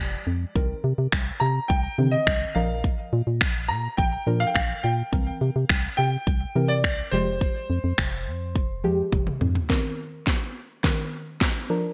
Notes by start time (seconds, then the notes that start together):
Already playing: F3 G#3 G4 D5
0.00 F1
0.27 F2
0.55 C2 D#3 C4 A#4, kick
0.84 C3
0.98 C3
1.12 C2, finger snap, kick
1.40 C3 A#5
1.68 C2 G5, kick
1.98 C3 D3 D#3 C4
2.11 D#5
2.27 C2, finger snap, kick
2.55 A#1 F3 D4 A#4 F5
2.84 kick
3.13 A#2
3.27 A#2
3.41 A#1, finger snap, kick
3.68 A#2 A#5
3.97 A#1 G5, kick
4.26 A#2 F3 D4 A#4
4.40 F5
4.47 G5
4.54 A#1 F5, finger snap, kick
4.83 A#2 G5
5.12 C2 E3 C4 A#4, kick
5.41 C3
5.56 C3
5.70 C2, finger snap, kick
5.97 C3 G5
6.27 C2, kick
6.55 C3 E3 C4 A#4
6.68 D5
6.84 C2, finger snap, kick
7.11 F1 F3 G#3 G4 C5
7.41 kick
7.70 F2
7.84 F2
7.98 F1, finger snap, kick
8.27 F2
8.56 F1, kick
8.84 F2 F3 G#3 G4
9.13 F1, kick, high tom
9.27 mid tom
9.41 F2, mid tom
9.55 floor tom
9.69 D#3 C4 A#4, kick, snare
10.27 kick, snare
10.84 D#3 C4 A#4, kick, snare
11.41 kick, snare
11.70 F3 D4 A#4